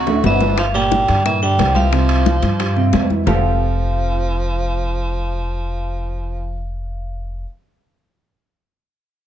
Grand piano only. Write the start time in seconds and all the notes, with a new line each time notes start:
0.07 A2 A3 A4
0.24 C3 C4 D4
0.41 D3 D4 F4
0.74 A#2 A#3
1.08 D3 D4
1.25 A#2 A#3
1.42 D3 D4
1.75 C3 C4
1.92 C3 C4
2.26 F3 F4
2.60 G3 G4
2.76 C3 C4
3.11 E3 E4
3.26 F3 C4 F4 G4 A4